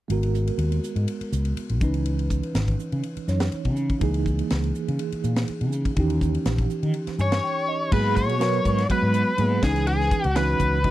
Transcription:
0.08 G#1 G#3 B3 F#4 A#4, ride
0.23 ride
0.34 hi-hat pedal
0.47 ride
0.58 D#2, ride
0.72 ride
0.83 hi-hat pedal
0.96 G#2, ride
1.08 ride
1.21 muted fretless electric bass stroke, ride
1.32 C#2, hi-hat pedal
1.45 ride
1.57 muted fretless electric bass stroke, ride
1.69 B1, ride
1.81 C#2 E3 C#4 D#4 B4, kick, hi-hat pedal
1.94 ride
2.06 ride
2.19 ride
2.30 kick, hi-hat pedal
2.43 ride
2.55 G#1, snare, ride
2.68 kick, ride
2.79 hi-hat pedal
2.92 C#3, ride
3.03 ride
3.17 muted fretless electric bass stroke, ride
3.27 F#2 E3 C#4 D#4 C#5, snare, hi-hat pedal
3.40 snare, ride
3.52 muted fretless electric bass stroke, ride
3.65 C#3, kick, ride
3.76 hi-hat pedal
3.90 kick, ride
3.99 C#2 E3 A#3 D#4 G#4, kick, ride
4.14 ride
4.26 kick, hi-hat pedal
4.39 ride
4.50 C#2, snare, ride
4.64 ride
4.75 hi-hat pedal
4.88 C#3, ride
4.99 ride
5.12 muted fretless electric bass stroke, ride
5.24 A#2, hi-hat pedal
5.36 snare, ride
5.48 muted fretless electric bass stroke, ride
5.61 C#3, ride
5.72 hi-hat pedal
5.85 kick, ride
5.96 D#2 E3 C#4 D#4 G4, kick, ride
6.10 ride
6.21 kick, hi-hat pedal
6.35 ride
6.46 A#1, snare, ride
6.58 kick, ride
6.70 hi-hat pedal
6.83 D#3, ride
6.94 ride
7.07 muted fretless electric bass stroke, snare, ride
7.18 G2 C#5 G#5 C#6, hi-hat pedal
7.32 snare, ride
7.44 G5
7.68 D#5
7.92 G#2 F#3 A#3 B3 G#4 B4, kick, crash
7.96 B5
8.17 C#5 C#6, kick, hi-hat pedal, ride
8.29 B2, ride
8.39 F#3 B3 A#4 B4, snare, ride
8.65 G#2, kick, hi-hat pedal, ride
8.78 snare, ride
8.89 F#3 G#3 B3 F#4 B4 B5, kick, ride
9.02 G#2
9.14 hi-hat pedal, ride
9.37 G#2 F#3 A#3 B3 G#4, ride
9.62 C#2 E3 C#4 D#4 G#4 B4 G#5, kick, snare, hi-hat pedal, ride
9.76 snare, ride
9.87 G#4 G#5, ride
10.00 snare
10.11 kick, hi-hat pedal, ride
10.24 C#2, ride
10.36 E3 C#4 D#4 F#4 B4 B5, snare, ride
10.60 C#2, kick, hi-hat pedal, ride
10.84 E3 C#4 D#4 F#4, kick, ride

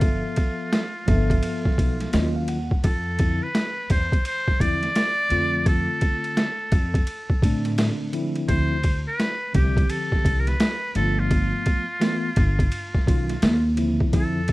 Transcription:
Already playing: G1 F3 B3 F4 A4 E5
0.01 kick, ride
0.36 kick, ride
0.73 snare, hi-hat pedal, ride
1.07 G1 F3 A#3 A4 E5, kick, ride
1.14 B3
1.30 kick, ride
1.43 ride
1.65 muted upright bass stroke, kick, snare
1.78 B1, kick, ride
2.00 snare, ride
2.13 D#2 D#3 F#3 C#4 F4 D#5, snare, hi-hat pedal, ride
2.36 F5
2.48 F#5, ride
2.71 kick
2.84 F2 A4, kick, ride
3.18 D3 F3 C4 E4, kick, ride
3.43 B4
3.55 snare, hi-hat pedal, ride
3.90 E2 C5, kick, ride
4.12 kick, ride
4.25 C5, ride
4.48 kick, snare
4.59 E2 D3 F3 C4 E4 D5, kick, ride
4.83 snare, ride
4.96 snare, hi-hat pedal, ride
5.30 F2 D3 A3 C4 F4, ride
5.66 A4, kick, ride
6.01 kick, ride
6.24 ride
6.37 snare, hi-hat pedal, ride
6.72 F2, kick, ride
6.94 kick, ride
7.07 ride
7.30 muted upright bass stroke, kick
7.42 A2 D3 A3 C4 D4, kick, ride
7.65 snare, ride
7.78 snare, hi-hat pedal, ride
8.12 D3 F3 C4 E4, ride
8.36 ride
8.48 D2 D3 F3 C4 E4 C5, kick, ride
8.84 kick, ride
9.08 B4
9.20 snare, hi-hat pedal, ride
9.53 C2 D3 F3 C4 G4, kick, ride
9.77 kick, ride
9.90 A4, ride
10.12 kick, snare
10.25 C2, kick, ride
10.40 A#4
10.47 B4, snare, ride
10.60 snare, hi-hat pedal, ride
10.95 G1 F3 A3 B3 F4 A4, ride
11.19 F4
11.31 kick, ride
11.66 kick, ride
12.00 E3 A3 B3 F4, snare, hi-hat pedal, ride
12.36 G1, kick, ride
12.59 kick, ride
12.72 ride
12.94 muted upright bass stroke, kick, snare
13.06 B1 D#3 F#3 C#4 F4, kick, ride
13.29 snare, ride
13.42 D#2, snare, hi-hat pedal, ride
13.77 D3 F3 C4 E4, ride
14.01 kick
14.12 F2 D3 F3 C4 E4 A4, kick, ride
14.48 kick, ride

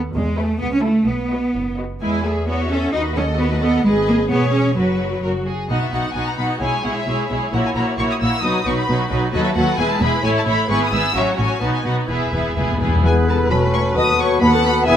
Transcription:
Already playing: A4 B4 F#5
0.15 E2 G#3
0.38 A3 G#4 B4 E5
0.61 C#2 B3
0.74 C#4
0.84 A3 E4 A4 E5
1.07 B1 B3
1.32 F#4 B4 D#5
1.55 F#1
1.77 F#4 B4 D#5
2.01 E2 G#3 E4 B4 G#5
2.24 A3 G#4 E5
2.47 B3 F#4 C#5 E5
2.70 C#4 A4 E5 F#5
2.93 D#2 D#4 F#4 B4 D#5
3.15 C#4 A4 D#5 F#5
3.38 B3 F#4 B4 D#5
3.51 A3
3.62 B3 A4 D#5 F#5
3.84 G#1 G#3 G#4 B4 D#5
4.08 A#3
4.30 E1 B3 G#4 C#5
4.53 C#4
4.76 F#1 F#3 F#4 B4 C#5
5.23 F#1 F#4 A#4 C#5
5.46 G#4
5.69 B1 B2 B3 D#4 F#4 D#5 F#5
5.83 E5
5.92 B1 B2 B3 D#4 F#4 F#5
6.14 B1 B2 B3 D#4 F#4 F#5 G#5
6.28 A#5
6.37 B1 B2 B3 D#4 F#4 F#5 B5
6.61 B1 B2 G#3 E4 G#4 C#5 G#5
6.84 B1 B2 G#3 E4 G#4 C#5 F#5
6.96 E5
7.07 B1 B2 G#3 E4 G#4 C#5
7.30 B1 B2 G#3 E4 G#4 C#5
7.52 A#1 A#2 A#3 E4 F#4 C#5 F#5
7.66 G#5
7.76 A#1 A#2 A#3 E4 F#4 C#5 A#5
7.98 A#1 A#2 A#3 E4 F#4 C#5 C#6
8.11 D#6
8.21 A#1 A#2 A#3 E4 F#4 C#5 E6
8.42 B1 B2 F#3 D#4 F#4 B4 D#6
8.65 B1 B2 F#3 D#4 F#4 B4 C#6
8.77 B5
8.88 B1 B2 F#3 D#4 F#4 B4
9.10 B1 B2 F#3 D#4 F#4 B4
9.32 D#2 F#3 F#4 A4 B4 D#5
9.44 E5
9.54 D#2 F#3 F#4 A4 B4 F#5
9.77 E1 E2 G#3 E4 G#4 B4 G#5
9.90 A5
10.01 E1 E2 G#3 E4 G#4 B4 B5
10.23 A1 A2 A3 E4 C#5 G#5
10.38 A5
10.46 A1 A2 A3 E4 C#5 B5
10.69 G#1 G#2 B3 E4 G#4 B4 C#6
10.84 D#6
10.92 G#1 G#2 B3 E4 G#4 B4 E6
11.15 A1 A2 F#3 C#4 F#4 C#5 E5
11.31 F#5
11.37 A1 A2 F#3 C#4 F#4 C#5 G#5
11.61 B1 B2 B3 D#4 F#4 B4 A5
11.75 G#5
11.84 B1 B2 B3 D#4 F#4 B4 F#5
12.09 E1 E2 B3 E4 G#4 B4 E5
12.17 E2
12.26 E2
12.33 E1 E2 B3 E4 G#4 B4
12.41 E2
12.49 E2
12.56 E1 C#2 E2 B3 E4 G#4 B4
12.64 E2
12.70 D#2 E2
12.81 E1 E2 B3 E4 G#4 B4
12.88 E2
12.96 E2
13.04 E1 E2 B3 E4 G#4 B4 G#5
13.27 B3 G#4 A4 A5
13.49 E1 E2 A3 C#4 F#4 A4 B4 B5
13.72 A3 F#4 C#5 C#6
13.96 D#2 B3 F#4 A4 D#5 D#6
14.19 B3 F#4 C#5 C#6
14.40 D#2 B3 F#4 A4 B4 F#5 B5
14.54 A4 A5
14.64 B3 F#4 B4 B5
14.86 E1 E2 B3 E4 G#4 E5 G#5

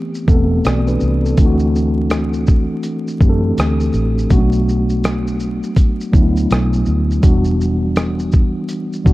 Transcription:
Already playing: E3 A3 B3 C4 G4
0.15 shaker
0.27 E1 E3 A3 B3 C4 A4, kick, shaker
0.65 B1 F#4 D5, cross-stick, closed hi-hat, shaker
0.87 D4 B4, shaker
1.00 C2, shaker
1.24 C4 A4, shaker
1.37 D2 E3 A3 C4 D4 F4, kick, closed hi-hat, shaker
1.46 F#4
1.59 shaker
1.76 shaker
2.10 cross-stick, closed hi-hat, shaker
2.33 shaker
2.47 kick, shaker
2.83 closed hi-hat, shaker
3.08 shaker
3.20 F#2 E3 A3 C4 D4 G4, kick, shaker
3.29 A4
3.58 D2, cross-stick, closed hi-hat, shaker
3.80 shaker
3.93 A1, shaker
4.18 shaker
4.30 B1 F#3 A3 B3 C#4 F#4, kick, closed hi-hat, shaker
4.38 D4
4.52 shaker
4.69 shaker
4.89 shaker
5.04 cross-stick, closed hi-hat, shaker
5.27 shaker
5.40 shaker
5.63 shaker
5.76 kick, closed hi-hat, shaker
6.01 shaker
6.12 D2 F#3 A3 B3 D4 E4, kick, shaker
6.37 shaker
6.51 B1, cross-stick, closed hi-hat, shaker
6.73 shaker
6.86 D2, shaker
7.11 shaker
7.21 E1 E3 G3 B3 D4 F#4, kick, closed hi-hat, shaker
7.45 shaker
7.61 shaker
7.96 cross-stick, closed hi-hat, shaker
8.19 shaker
8.32 kick, shaker
8.69 closed hi-hat, shaker
8.93 shaker
9.04 B1 E3 G3 B3 D4 F#4, kick, shaker

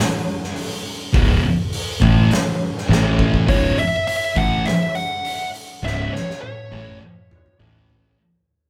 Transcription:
0.00 snare
0.44 snare
0.56 open hi-hat
1.13 C#1 C#2 G#2 C#3, kick, open hi-hat
1.42 muted distorted electric guitar stroke, muted fingered electric bass stroke
1.73 open hi-hat
2.00 A1 A2 E3 A3, kick
2.31 snare, open hi-hat
2.78 snare
2.88 A1 A2 E3 A3, snare
3.19 kick
3.34 kick
3.47 C#1 C#2 G#2 C#3 C#5, kick, open hi-hat
3.77 E5, muted distorted electric guitar stroke, muted fingered electric bass stroke, open hi-hat
4.07 E5, open hi-hat
4.35 A1 A2 E3 A3 F#5, kick, open hi-hat
4.66 E5, snare, open hi-hat
4.95 F#5, open hi-hat
5.25 open hi-hat
5.54 open hi-hat
5.82 C#1 C#2 G#2 C#3 E5
5.87 snare
6.12 C#5, muted distorted electric guitar stroke, muted fingered electric bass stroke, snare
6.30 snare
6.41 C#5, high tom
6.71 A1 A2 E3 A3, high tom
6.87 mid tom
7.02 mid tom
7.31 mid tom
7.46 mid tom
7.60 A1 A2 E3 A3, mid tom
7.90 floor tom
8.05 floor tom

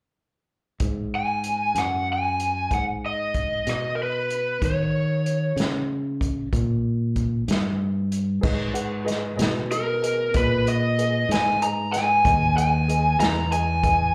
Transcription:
0.80 G#2, kick, closed hi-hat
1.15 G#5
1.44 closed hi-hat
1.75 F#2, cross-stick, closed hi-hat
1.79 F#5
2.13 G#5
2.40 closed hi-hat
2.71 G#2 F#5, kick, closed hi-hat
3.06 D#5
3.34 kick, closed hi-hat
3.67 B2 D#5, cross-stick, closed hi-hat
3.95 A#4
4.02 B4
4.30 closed hi-hat
4.62 D#3 C#5, kick, closed hi-hat
5.26 closed hi-hat
5.56 C#3, snare, closed hi-hat
6.21 kick, closed hi-hat
6.53 A#2, kick, closed hi-hat
7.16 kick, closed hi-hat
7.48 G2, snare, closed hi-hat
8.12 closed hi-hat
8.41 G#2 G#4 B4 D#5, kick, crash
8.73 G#4 B4 F#5, closed hi-hat
9.05 G#4 B4 D#5, closed hi-hat
9.10 snare
9.36 B2 G#4 B4 D#5, closed hi-hat
9.42 snare
9.70 G#4 A#4 B4 D#5, closed hi-hat
10.02 G#4 B4 D#5, closed hi-hat
10.33 A#2 G#4 B4 D#5, kick, closed hi-hat
10.65 G#4 B4 D#5, closed hi-hat
10.98 G#4 B4 D#5, closed hi-hat
11.29 G#2 G#4 B4 D#5 G#5, closed hi-hat
11.34 snare
11.61 G#4 B4 D#5 A#5, closed hi-hat
11.92 G#4 B4 D#5 G#5, closed hi-hat
11.96 snare
12.24 D#2 G#4 B4 D#5, kick, closed hi-hat
12.56 G#4 B4 D#5 G#5, closed hi-hat
12.88 G#4 B4 D#5, closed hi-hat
13.19 E2 G#4 B4 D#5 A#5, closed hi-hat
13.23 snare
13.51 G#4 B4 D#5 G#5, closed hi-hat
13.83 G#4 B4 D#5, kick, closed hi-hat

